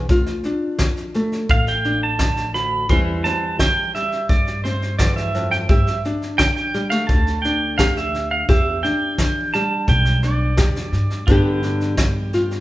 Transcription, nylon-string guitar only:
0.00 0.10 G3 soft
0.10 0.73 D2 medium
0.10 2.86 F4 medium
0.45 1.84 D4 medium
0.80 1.43 D3 medium
1.15 2.86 A3 medium
1.49 2.12 A2 medium
1.85 2.86 D4 medium
2.54 2.89 D2 medium
2.90 3.53 E2 medium
2.90 3.59 E3 medium
2.90 3.95 G3 medium
2.90 3.24 C4 medium
2.90 5.67 E4 medium
3.26 4.64 C4 medium
3.60 4.23 E3 medium
3.95 6.74 G3 medium
4.30 4.93 E2 medium
4.65 5.65 C4 medium
4.99 5.34 E2 medium
5.35 5.69 F2 medium
5.69 6.32 G2 medium
5.69 7.79 G4 medium
6.06 7.45 D4 medium
6.39 7.02 D3 medium
6.74 6.92 G3 medium
6.92 8.49 A3 medium
7.09 7.72 D3 medium
7.45 8.52 D4 medium
7.79 8.42 D3 medium
7.79 8.49 G4 medium
8.49 9.12 E2 medium
8.49 10.57 G4 medium
8.84 10.23 D4 medium
9.18 9.81 E3 medium
9.55 11.29 G3 medium
9.88 10.51 B2 medium
10.24 11.24 D4 medium
10.58 11.21 E3 medium
10.58 11.24 G4 medium
11.28 11.91 G2 medium
11.28 11.97 D3 medium
11.28 12.60 B3 medium
11.28 11.64 D4 medium
11.28 12.34 G4 medium
11.64 12.60 D4 medium
11.98 12.60 D3 medium
12.34 12.60 F4 medium

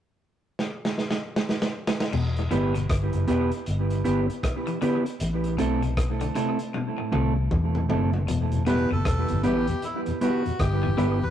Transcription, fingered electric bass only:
2.14 2.47 E1 loud
2.52 2.86 G1 medium
2.90 3.11 G1 medium
3.14 3.27 F#1 medium
3.29 3.49 E1 medium
3.67 4.01 G1 medium
4.06 4.27 G1 medium
5.21 5.55 A1 loud
5.60 6.28 B1 medium
7.14 7.48 C2 medium
7.52 7.86 E2 medium
7.91 8.25 F#1 medium
8.30 8.84 E1 loud
8.92 9.04 F#1 medium
9.06 9.27 E1 medium
9.30 9.43 G1 medium
9.45 9.65 A1 medium
10.60 10.94 G1 medium
10.98 11.19 G1 medium

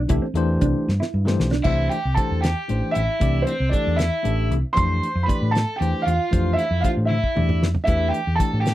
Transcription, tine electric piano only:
0.09 0.25 E3 medium
0.09 0.25 A3 medium
0.09 0.25 D4 medium
0.09 0.25 G4 medium
0.09 0.26 A4 medium
0.35 0.90 E3 medium
0.35 0.90 A3 medium
0.35 0.90 D4 medium
0.35 0.91 G4 medium
0.35 0.91 C5 loud
1.25 1.49 E3 medium
1.25 1.50 A3 medium
1.25 1.50 D4 medium
1.25 1.50 G4 medium
1.25 1.50 C5 medium
1.64 1.96 E3 medium
1.64 1.96 A3 medium
1.64 1.97 D4 medium
1.64 1.97 G4 medium
1.64 1.97 C5 medium
2.16 2.48 E3 medium
2.16 2.48 A3 medium
2.16 2.49 D4 medium
2.16 2.49 G4 medium
2.16 2.49 C5 medium
2.69 3.00 E3 medium
2.69 3.00 A3 medium
2.69 3.01 D4 medium
2.69 3.01 G4 medium
2.69 3.01 C5 medium
3.20 3.52 E3 medium
3.20 3.52 A3 medium
3.20 3.52 D4 medium
3.20 3.53 G4 medium
3.20 3.53 D5 medium
3.71 4.03 E3 medium
3.71 4.04 A3 medium
3.71 4.04 D4 medium
3.71 4.04 G4 medium
3.71 4.04 A4 medium
4.23 4.55 E3 medium
4.23 4.56 A3 medium
4.23 4.56 D4 medium
4.23 4.56 G4 medium
4.23 4.56 A4 medium
4.75 5.07 E3 medium
4.75 5.07 A3 medium
4.75 5.08 D4 medium
4.75 5.08 G4 medium
4.75 5.08 C5 medium
5.27 5.59 E3 medium
5.27 5.59 A3 medium
5.27 5.59 D4 medium
5.27 5.60 G4 medium
5.27 5.60 D5 medium
5.80 6.12 E3 medium
5.80 6.12 A3 medium
5.80 6.12 D4 medium
5.80 6.12 G4 medium
5.80 6.13 C5 medium
6.31 6.63 E3 medium
6.31 6.63 A3 medium
6.31 6.63 D4 medium
6.31 6.64 G4 medium
6.31 6.64 C5 medium
6.82 7.15 E3 medium
6.82 7.15 A3 medium
6.82 7.15 D4 medium
6.82 7.16 G4 medium
6.82 7.16 C5 medium
7.35 7.67 E3 medium
7.35 7.67 A3 medium
7.35 7.67 D4 medium
7.35 7.68 G4 medium
7.35 7.68 D5 medium
7.87 8.18 E3 medium
7.87 8.19 A3 medium
7.87 8.19 D4 medium
7.87 8.19 G4 medium
7.87 8.20 B4 medium
8.39 8.70 E3 medium
8.39 8.71 A3 medium
8.39 8.71 D4 medium
8.39 8.71 G4 medium
8.39 8.71 A4 medium

